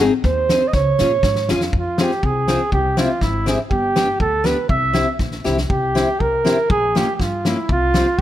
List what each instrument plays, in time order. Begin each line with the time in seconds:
0.01 steel-string acoustic guitar C4 D#4 G#4
0.23 upright bass D#2, flugelhorn C5, kick, snare
0.49 steel-string acoustic guitar C4 D#4 G#4, snare, hi-hat pedal
0.68 flugelhorn D#5
0.73 upright bass C#2, flugelhorn C#5, kick, snare
0.99 upright bass A#2, steel-string acoustic guitar C#4 F4 G#4, snare, hi-hat pedal
1.23 upright bass G#2, kick, snare
1.36 snare
1.49 upright bass F2, steel-string acoustic guitar C#4 F4 G#4, flugelhorn F4, snare, hi-hat pedal
1.61 snare
1.73 upright bass F2, kick
1.79 flugelhorn F4
1.98 steel-string acoustic guitar C4 F4 G#4, snare
2.03 flugelhorn G4
2.11 snare
2.23 upright bass C2, flugelhorn G#4, kick
2.48 steel-string acoustic guitar C4 F4 G#4, snare
2.72 upright bass C2, flugelhorn G4, kick
2.97 steel-string acoustic guitar C4 E4 G4, flugelhorn F4, snare
3.21 upright bass G#1, flugelhorn E4, kick, snare
3.46 steel-string acoustic guitar C4 E4 G4, flugelhorn G#4, snare
3.71 upright bass G1, flugelhorn G4, kick
3.96 steel-string acoustic guitar B3 D4 G4, snare
4.20 upright bass D2, flugelhorn A4, kick
4.44 steel-string acoustic guitar B3 D4 G4, flugelhorn B4, snare
4.69 upright bass C2, flugelhorn E5, kick
4.93 steel-string acoustic guitar C4 E4 G4, snare
5.19 upright bass A#1, kick, snare
5.31 snare
5.44 upright bass C2, steel-string acoustic guitar C4 E4 G4, flugelhorn E4, snare
5.58 snare
5.70 upright bass C2, flugelhorn G4, kick
5.95 steel-string acoustic guitar C4 E4 G4, snare
6.20 upright bass C2, flugelhorn A#4, kick
6.45 steel-string acoustic guitar C4 E4 G4, snare
6.70 upright bass A#1, flugelhorn G#4, kick
6.95 steel-string acoustic guitar A#3 C#4 F4, flugelhorn G4, snare
7.15 flugelhorn G4
7.20 upright bass G2, flugelhorn F4, kick, snare
7.45 steel-string acoustic guitar A#3 C#4 F4, flugelhorn E4, snare
7.69 upright bass C2, flugelhorn F4, kick
7.94 steel-string acoustic guitar G3 C4 F4, snare